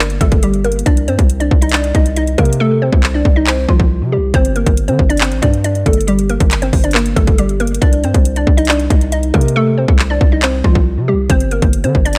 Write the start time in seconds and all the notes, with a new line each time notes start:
Already playing: G1
0.00 A#3 A#4, closed hi-hat
0.10 closed hi-hat
0.21 G1 A3 A4, kick, closed hi-hat
0.32 kick, closed hi-hat
0.43 G3 G4, closed hi-hat
0.54 closed hi-hat
0.64 A#3 A#4, closed hi-hat
0.72 closed hi-hat
0.79 closed hi-hat
0.86 C2 D4 D5, kick, closed hi-hat
0.97 closed hi-hat
1.08 G2 C4 C5, closed hi-hat
1.19 C2, kick, closed hi-hat
1.30 closed hi-hat
1.40 D4 D5, closed hi-hat
1.51 C2, kick
1.62 D#4 D#5, closed hi-hat
1.69 D5, clap, closed hi-hat
1.74 D4, closed hi-hat
1.84 closed hi-hat
1.95 C2 D#4 D#5, kick, closed hi-hat
2.06 closed hi-hat
2.16 D#4 D#5, closed hi-hat
2.27 closed hi-hat
2.38 C3 A#3 A#4, kick, closed hi-hat
2.45 closed hi-hat
2.53 closed hi-hat
2.60 A3 A4
2.82 C4 C5
2.92 C2, kick
3.03 clap
3.14 D4 D5
3.25 C2, kick
3.36 D#4 D#5
3.47 C4 C5, clap
3.69 C2 F3 F4, kick
3.80 kick
4.01 C3
4.12 G3 G4
4.18 C2
4.34 G1 C4 C5, kick, closed hi-hat
4.45 closed hi-hat
4.56 A#3 A#4, closed hi-hat
4.66 G1, kick, closed hi-hat
4.77 closed hi-hat
4.88 D3 C4 C5, closed hi-hat
4.99 G1, kick
5.09 D4 D5, closed hi-hat
5.17 C5, clap, closed hi-hat
5.21 C4, closed hi-hat
5.32 A1, closed hi-hat
5.42 G2 D4 D5, kick, closed hi-hat
5.54 closed hi-hat
5.64 D4 D5, closed hi-hat
5.75 closed hi-hat
5.86 G1 A3 A4, kick, closed hi-hat
5.93 closed hi-hat
6.01 closed hi-hat
6.07 G3 G4, closed hi-hat
6.19 closed hi-hat
6.29 A#3 A#4, closed hi-hat
6.40 G1, kick, closed hi-hat
6.51 clap, closed hi-hat
6.62 C4 C5, closed hi-hat
6.73 G1, kick, open hi-hat
6.84 D4 D5, closed hi-hat
6.91 A#3 A#4, clap, closed hi-hat
6.98 closed hi-hat
7.06 closed hi-hat
7.16 G1 A3 A4, kick, closed hi-hat
7.27 kick, closed hi-hat
7.38 G3 G4, closed hi-hat
7.49 closed hi-hat
7.60 A#3 A#4, closed hi-hat
7.67 closed hi-hat
7.75 closed hi-hat
7.82 C2 D4 D5, kick, closed hi-hat
7.93 closed hi-hat
8.03 G2 C4 C5, closed hi-hat
8.14 C2, kick, closed hi-hat
8.25 closed hi-hat
8.36 D4 D5, closed hi-hat
8.47 C2, kick
8.57 D#4 D#5, closed hi-hat
8.65 D5, clap, closed hi-hat
8.70 D4, closed hi-hat
8.80 closed hi-hat
8.90 C2 D#4 D#5, kick, closed hi-hat
9.01 closed hi-hat
9.12 D#4 D#5, closed hi-hat
9.23 closed hi-hat
9.34 C3 A#3 A#4, kick, closed hi-hat
9.41 closed hi-hat
9.48 closed hi-hat
9.56 A3 A4
9.78 C4 C5
9.88 C2, kick
9.99 clap
10.10 D4 D5
10.21 C2, kick
10.32 D#4 D#5
10.42 C4 C5, clap
10.64 C2 F3 F4, kick
10.75 kick
10.97 C3
11.08 G3 G4
11.13 C2
11.30 G1 C4 C5, kick, closed hi-hat
11.40 closed hi-hat
11.51 A#3 A#4, closed hi-hat
11.62 G1, kick, closed hi-hat
11.73 closed hi-hat
11.84 D3 C4 C5, closed hi-hat
11.95 G1, kick
12.05 D4 D5, closed hi-hat
12.13 closed hi-hat